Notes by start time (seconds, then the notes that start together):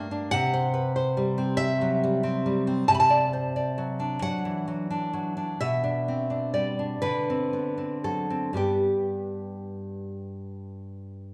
Already playing: G2 A3 A#3 D4 G5
0.11 D4
0.31 C3 F#5
0.54 C5
0.74 B4
0.96 C5
1.17 G3
1.38 C4
1.57 G3 E5
1.81 F#3
2.03 G3
2.23 C4
2.46 G3
2.67 C4
2.88 C3 A5
2.94 B5
3.00 A5
3.10 D5
3.33 C5
3.56 D5
3.78 F#3
4.00 D4
4.22 F#3 F#5
4.45 E3
4.68 F#3
4.91 D4
5.13 F#3
5.37 D4
5.61 B2 E5
5.84 D4
6.08 C4
6.30 D4
6.54 G3 D5
6.79 D4
7.02 D3 B4
7.30 C4
7.53 B3
7.78 C4
8.04 F#3 A4
8.30 C4
8.53 G2 G3 B3 G4